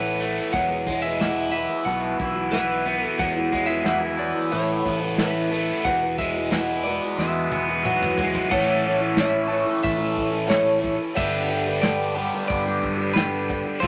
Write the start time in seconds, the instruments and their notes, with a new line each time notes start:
Already playing: fingered electric bass A1, twelve-string acoustic guitar A2 E3 A3 B3 E4, overdriven electric guitar A2 B3 E4, clean electric guitar B4
0.19 twelve-string acoustic guitar E3 A3 B3 E4, open hi-hat
0.53 fingered electric bass E1, twelve-string acoustic guitar E2 B2 F#3 G#3 B3 E4, clean electric guitar F#5, kick, open hi-hat
0.69 twelve-string acoustic guitar F#3 G#3 B3 E4
0.87 twelve-string acoustic guitar F#3 G#3 B3 E4, kick, open hi-hat
1.02 twelve-string acoustic guitar B3, clean electric guitar E5
1.06 twelve-string acoustic guitar F#3 G#3 E4
1.21 twelve-string acoustic guitar E2 B2 F#3 G#3 B3 E4, snare, open hi-hat
1.52 twelve-string acoustic guitar F#3 G#3 B3 E4, clean electric guitar E5, open hi-hat
1.69 twelve-string acoustic guitar F#3 G#3 B3 E4
1.85 fingered electric bass B1, twelve-string acoustic guitar B2 E3 B3 E4 F#4, clean electric guitar F#5, open hi-hat
2.19 fingered electric bass B1, twelve-string acoustic guitar E3 B3 E4 F#4, kick, open hi-hat
2.34 twelve-string acoustic guitar B3 E4 F#4
2.52 twelve-string acoustic guitar B2 E3 B3 E4 F#4, clean electric guitar B4, snare, open hi-hat
2.86 twelve-string acoustic guitar E3 B3 E4 F#4, open hi-hat
3.04 clean electric guitar A4
3.19 fingered electric bass E2, twelve-string acoustic guitar E2 B2 F#3 G#3 B3 E4, tonewheel organ G#3 E4 F#4, clean electric guitar F#5, kick, open hi-hat
3.36 twelve-string acoustic guitar F#3 G#3 B3 E4
3.51 twelve-string acoustic guitar F#3 G#3 B3 E4, kick, open hi-hat
3.66 twelve-string acoustic guitar G#3 B3 E4, clean electric guitar E5
3.71 twelve-string acoustic guitar F#3
3.83 twelve-string acoustic guitar E2 B2 F#3 G#3 B3 E4, snare, open hi-hat
4.00 twelve-string acoustic guitar F#3 G#3 B3 E4
4.17 twelve-string acoustic guitar F#3 G#3 B3 E4, clean electric guitar D5, open hi-hat
4.33 twelve-string acoustic guitar F#3 G#3 B3 E4
4.50 fingered electric bass A1, twelve-string acoustic guitar A2 E3 A3 B3 E4, tonewheel organ A3 B4, clean electric guitar C#5, open hi-hat
4.84 fingered electric bass A1, twelve-string acoustic guitar E3 A3 B3 E4, kick, open hi-hat
5.01 twelve-string acoustic guitar A3 B3 E4, clean electric guitar B4
5.18 twelve-string acoustic guitar A2 E3 A3 B3 E4, clean electric guitar B4, snare, open hi-hat
5.51 twelve-string acoustic guitar E3 A3 B3 E4, open hi-hat
5.84 fingered electric bass E1, twelve-string acoustic guitar E2 B2 E3 G#3 B3 F#4, tonewheel organ G#3 F#4, clean electric guitar F#5, kick, open hi-hat
6.02 twelve-string acoustic guitar E3 G#3 B3 F#4
6.17 twelve-string acoustic guitar E3 G#3 B3 F#4, clean electric guitar E5, kick, open hi-hat
6.36 twelve-string acoustic guitar E3 G#3 B3 F#4
6.51 twelve-string acoustic guitar E2 B2 E3 G#3 B3 F#4, overdriven electric guitar E4, snare, open hi-hat
6.84 twelve-string acoustic guitar E3 G#3 B3, clean electric guitar D5, open hi-hat
6.88 twelve-string acoustic guitar F#4
7.04 twelve-string acoustic guitar E3 G#3 B3 F#4
7.17 fingered electric bass E2, overdriven electric guitar G#3, clean electric guitar E5, snare
7.51 fingered electric bass E1, twelve-string acoustic guitar E3 G#3 B3 F#4, high tom
7.68 twelve-string acoustic guitar E3 G#3 B3 F#4
7.83 twelve-string acoustic guitar E2 B2 E3 G#3 B3 F#4, overdriven electric guitar F#3, mid tom
8.02 mid tom
8.18 twelve-string acoustic guitar E3 G#3 B3 F#4, floor tom
8.35 floor tom
8.51 fingered electric bass A1, twelve-string acoustic guitar A2 E3 A3 C#4 E4, tonewheel organ E4 C#5 A5, overdriven electric guitar A4, clean electric guitar F#5, kick, crash
8.85 twelve-string acoustic guitar E3 A3 C#4 E4, open hi-hat
9.00 twelve-string acoustic guitar A3 C#4 E4
9.17 twelve-string acoustic guitar A2 E3 A3 C#4 E4, clean electric guitar E5, snare, open hi-hat
9.48 overdriven electric guitar A2 A4, twelve-string acoustic guitar E3 A3 C#4, open hi-hat
9.53 twelve-string acoustic guitar E4
9.65 twelve-string acoustic guitar A3 C#4 E4
9.83 fingered electric bass A1, clean electric guitar E5, kick, open hi-hat
9.98 twelve-string acoustic guitar A3 C#4 E4
10.17 kick, open hi-hat
10.31 twelve-string acoustic guitar A3 C#4 E4
10.46 twelve-string acoustic guitar A2 E3 A3 C#4 E4, clean electric guitar C#5
10.50 snare, open hi-hat
10.79 twelve-string acoustic guitar E3 A3 C#4 E4
10.83 kick, open hi-hat
10.96 twelve-string acoustic guitar A3 C#4 E4
11.14 fingered electric bass G1, twelve-string acoustic guitar G2 D3 G3 B3 D4 G4, tonewheel organ D5 B5, clean electric guitar E5, kick, open hi-hat
11.18 tonewheel organ G4
11.46 twelve-string acoustic guitar G3 B3 D4 G4
11.51 open hi-hat
11.66 twelve-string acoustic guitar G3 B3 D4 G4
11.82 twelve-string acoustic guitar G2 D3 G3 B3 D4 G4, clean electric guitar D5, snare, open hi-hat
12.15 overdriven electric guitar G2 D3, twelve-string acoustic guitar G3 B3 D4 G4, open hi-hat
12.33 twelve-string acoustic guitar G3 B3 D4 G4
12.48 fingered electric bass G1, clean electric guitar D5, kick, open hi-hat
12.66 twelve-string acoustic guitar G3 B3 D4 G4
12.83 kick, open hi-hat
12.97 twelve-string acoustic guitar G3 B3 D4 G4
13.14 twelve-string acoustic guitar G2 D3 G3 B3 D4 G4, clean electric guitar B4, snare, open hi-hat
13.48 twelve-string acoustic guitar G3 B3 D4 G4, kick, open hi-hat
13.66 twelve-string acoustic guitar G3 B3 D4 G4
13.80 fingered electric bass F1, twelve-string acoustic guitar F2 C3 F3 A3 C4 F4, tonewheel organ F4 C5 A5, clean electric guitar C5, kick, open hi-hat